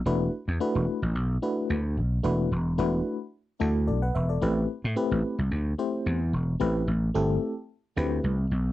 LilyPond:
<<
  \new Staff \with { instrumentName = "FM electric piano" } { \time 4/4 \key a \dorian \tempo 4 = 110 << { r1 | r2. <a' d''>16 <b' fis''>16 <b' e''>16 <a' d''>16~ | <a' d''>16 r2. r8. | r1 | } \\ { <a d' e' fis' b'>8 r8 <a d' e' fis' b'>8 r4 <a d' e' fis' b'>8 r4 | <a d' e' fis' b'>8 r8 <a d' e' fis' b'>8 r4 <a d' e' fis' a'>8 r4 | <a c' e' g' b'>8 r8 <a c' e' g' b'>8 r4 <a c' e' g' c''>8 r4 | <a c' e' g' b'>8 r8 <a c' e' g' a'>8 r4 <a c' e' g' b'>8 r4 | } >> }
  \new Staff \with { instrumentName = "Slap bass" } { \clef bass \time 4/4 \key a \dorian e,,8 r16 e,16 r16 e,,16 r16 a,,16 b,,8 r8 d,8 b,,8 | e,,8 e,,8 e,,8 r4 d,8 b,,8 e,,8 | a,,8 r16 a,16 r16 a,,16 r16 c,16 d,8 r8 e,8 e,,8 | a,,8 a,,8 g,,8 r4 d,8 c,8 b,,8 | }
>>